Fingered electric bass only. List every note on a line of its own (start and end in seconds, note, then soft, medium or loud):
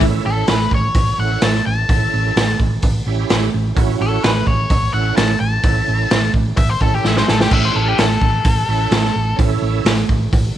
0.01 0.18 A1 medium
0.26 0.42 A1 medium
0.49 0.65 A1 medium
0.72 0.88 A1 medium
0.95 1.12 A1 medium
1.19 1.35 A1 medium
1.43 1.59 A1 medium
1.67 1.83 A1 medium
1.89 2.06 A1 medium
2.14 2.30 A1 medium
2.36 2.53 A1 medium
2.60 2.76 A1 medium
2.83 3.00 A1 medium
3.06 3.23 A1 medium
3.30 3.47 A1 medium
3.54 3.70 A1 medium
3.76 3.93 A1 loud
4.00 4.17 A1 medium
4.24 4.40 A1 medium
4.47 4.63 A1 medium
4.71 4.87 A1 medium
4.94 5.10 A1 medium
5.17 5.34 A1 medium
5.40 5.57 A1 medium
5.64 5.80 A1 loud
5.88 6.04 A1 medium
6.11 6.27 A1 medium
6.34 6.51 A1 medium
6.57 6.74 A1 medium
6.81 6.97 A1 medium
7.05 7.21 A1 medium
7.29 7.45 A1 medium
7.51 7.68 A1 loud
7.75 7.92 A1 medium
7.99 8.15 A1 medium
8.21 8.38 A1 medium
8.45 8.62 A1 medium
8.69 8.85 A1 medium
8.91 9.08 A1 medium
9.16 9.32 A1 medium
9.39 9.55 A1 loud
9.62 9.79 A1 medium
9.85 10.02 A1 medium
10.10 10.26 A1 medium
10.33 10.49 A1 medium